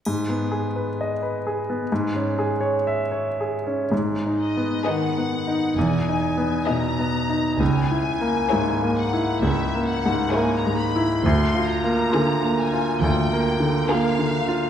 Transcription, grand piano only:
X:1
M:4/4
L:1/16
Q:1/4=66
K:G#m
V:1 name="Grand piano"
G,, B, G B d B G B, G,, C G c e c G C | (3G,,2 D2 B,2 (3D,2 B,2 D2 (3E,,2 D2 B,2 (3B,,2 B,2 D2 | (3C,,2 E2 A,2 (3G,,2 A,2 E2 (3C,,2 A,2 G,,2 (3A,2 G,,2 E2 | (3=D,,2 ^E2 A,2 (3=D,2 A,2 E2 (3D,,2 A,2 D,2 (3A,2 D,2 E2 |]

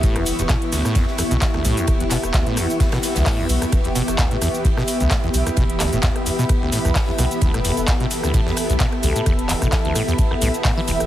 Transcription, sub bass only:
X:1
M:4/4
L:1/16
Q:"Swing 16ths" 1/4=130
K:Edor
V:1 name="Sub bass" clef=bass
E,,,2 z E,,, z6 z B,,, z2 B,,, z | E,,,2 z E,,, z6 z B,,, z2 B,,, z | E,,,2 z E,,, z6 z B,,, z2 B,,, z | E,,,2 z E,,, z6 z B,,, z2 B,,, z |
E,,,2 z E,,, z6 z B,,, z2 B,,, z | E,,,2 z E,,, z6 B,,, z3 E,,, D,,, |]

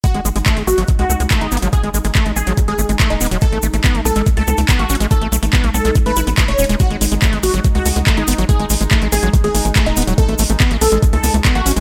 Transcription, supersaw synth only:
X:1
M:4/4
L:1/16
Q:1/4=142
K:G#phr
V:1 name="Supersaw synth"
F z4 z F z2 F2 z2 D z2 | G z4 z G z2 G2 z2 D z2 | A z4 z A z2 A2 z2 F z2 | A z4 z A z2 B2 z2 c z2 |
F z4 z F z2 F2 z2 D z2 | G z4 z G z2 G2 z2 D z2 | A z4 z A z2 A2 z2 F z2 |]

